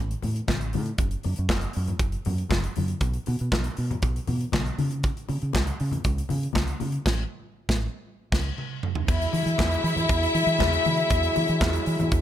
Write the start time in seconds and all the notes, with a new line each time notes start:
Already playing: A1
0.11 closed hi-hat
0.22 A2, open hi-hat, muted conga, low conga
0.36 closed hi-hat
0.48 A1, kick, snare, clap, high conga
0.61 closed hi-hat
0.73 A2, open hi-hat, high conga
0.86 closed hi-hat
0.98 F#1, kick, closed hi-hat, muted conga
1.11 closed hi-hat
1.23 F#2, open hi-hat, muted conga
1.36 F#2, closed hi-hat
1.49 F#1, kick, snare, clap, high conga
1.61 closed hi-hat
1.73 F#2, open hi-hat
1.88 closed hi-hat, low conga
1.99 F#1, kick, closed hi-hat
2.12 closed hi-hat
2.25 F#2, open hi-hat, muted conga, low conga
2.38 closed hi-hat
2.49 F#1, kick, snare, clap, high conga
2.64 closed hi-hat
2.76 F#2, open hi-hat, high conga
2.88 closed hi-hat
3.01 B1, kick, closed hi-hat
3.14 closed hi-hat
3.26 B2, open hi-hat, muted conga
3.39 B2, closed hi-hat
3.52 B1, kick, snare, clap, high conga
3.64 closed hi-hat
3.77 B2, open hi-hat
3.91 closed hi-hat, low conga
4.02 B1, kick, closed hi-hat
4.16 closed hi-hat
4.27 B2, open hi-hat, muted conga, low conga
4.41 closed hi-hat
4.52 B1, kick, snare, clap, high conga
4.66 closed hi-hat
4.78 C#3, open hi-hat, high conga
4.91 closed hi-hat
5.03 kick, closed hi-hat, muted conga
5.17 closed hi-hat
5.29 C#3, open hi-hat, muted conga
5.42 C#3, closed hi-hat
5.53 C#2, kick, snare, clap, high conga
5.67 closed hi-hat
5.80 C#3, open hi-hat
5.91 closed hi-hat, low conga
6.04 C#2, kick, closed hi-hat
6.18 closed hi-hat
6.29 C#3, open hi-hat, muted conga, low conga
6.43 closed hi-hat
6.53 C#2, kick, snare, clap, high conga
6.68 closed hi-hat
6.80 C#3, open hi-hat, high conga
6.92 closed hi-hat
7.06 A1, kick, snare, crash
7.69 A1, kick, snare
8.32 C#2, kick, snare, crash
8.58 high tom
8.83 mid tom
8.95 floor tom
9.08 E2 D3 F#3 G#3 E4 E5, kick, crash, muted conga, shaker
9.21 closed hi-hat, shaker
9.33 E3, open hi-hat, muted conga, shaker
9.46 E3, closed hi-hat, shaker
9.58 E2, kick, snare, clap, high conga, shaker
9.71 closed hi-hat, shaker
9.84 E3, open hi-hat, shaker
9.96 E3, closed hi-hat, low conga, shaker
10.09 E2, kick, closed hi-hat, shaker
10.23 closed hi-hat, shaker
10.34 E3, open hi-hat, muted conga, shaker
10.47 E3, closed hi-hat, shaker
10.59 E2, kick, snare, clap, high conga, shaker
10.73 closed hi-hat, shaker
10.85 E3, open hi-hat, high conga, shaker
10.97 closed hi-hat, shaker
11.10 E2, kick, closed hi-hat, muted conga, shaker
11.23 closed hi-hat, shaker
11.35 E3, open hi-hat, muted conga, shaker
11.48 E3, closed hi-hat, shaker
11.61 E2, kick, snare, clap, high conga, shaker
11.73 closed hi-hat, shaker
11.86 E3, open hi-hat, shaker
11.99 E3, closed hi-hat, low conga, shaker
12.12 E2, kick, closed hi-hat, shaker